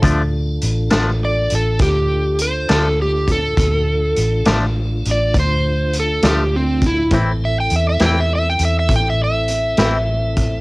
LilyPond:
<<
  \new Staff \with { instrumentName = "Electric slide guitar" } { \time 12/8 \key d \dorian \tempo 4. = 68 r2 d''8 a'8 g'4 c''8 a'8 g'8 a'8~ | a'4. r4 d''8 c''4 a'8 g'8 c'8 e'8 | r8 e''16 g''16 e''16 e''16 g''16 e''16 e''16 g''16 e''16 e''16 g''16 e''16 e''2~ e''8 | }
  \new Staff \with { instrumentName = "Tonewheel organ" } { \time 12/8 \key d \dorian <d' f' a'>1. | <bes dis' fis'>8 <a d' f'>1~ <a d' f'>4. | <c' e' a'>1. | }
  \new Staff \with { instrumentName = "Clean electric guitar" } { \clef bass \time 12/8 \key d \dorian <d f a d'>8 r4 <d f a d'>8 r2 r8 <d f a d'>8 r4 | r4. <d f a d'>8 r2 r8 <d f a d'>8 r4 | <a, e c' e'>8 r4 <a, e c' e'>8 r2 r8 <a, e c' e'>8 r4 | }
  \new Staff \with { instrumentName = "Fingered electric bass" } { \clef bass \time 12/8 \key d \dorian d,4 a,,8 a,,4 a,,8 d,4. d,4. | d,4 a,,8 a,,4 a,,8 d,4. d,4. | a,,4 e,8 e,4 e,8 a,,4. a,,4. | }
  \new DrumStaff \with { instrumentName = "Drums" } \drummode { \time 12/8 <hh bd>4 hh8 <hh sn>4 hh8 <hh bd sn>4 hh8 <hh sn>4 <hh bd>8 | <hh bd>4 hh8 <hh sn>4 hh8 <hh bd>4 hh8 <hh sn>4 <hh bd>8 | <hh bd>4 hh8 <hh sn>4 hh8 <hh bd>4 hh8 <hh sn>4 <hh bd>8 | }
>>